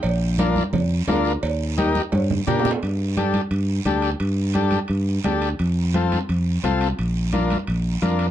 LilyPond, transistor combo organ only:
\new Staff \with { instrumentName = "Transistor combo organ" } { \time 4/4 \key g \minor \tempo 4 = 173 r4 <d' f' bes'>8 r4. <d' f' bes'>8 r8 | r4 <ees' g' bes'>8 r4. <d' g' bes'>8 r8 | r4 <d' g' a'>8 r4. <d' g' a'>8 r8 | r4 <d' g' a'>8 r4. <d' g' a'>8 r8 |
r4 <c' f' a'>8 r4. <c' f' a'>8 r8 | r4 <d' f' bes'>8 r4. <d' f' bes'>8 r8 | }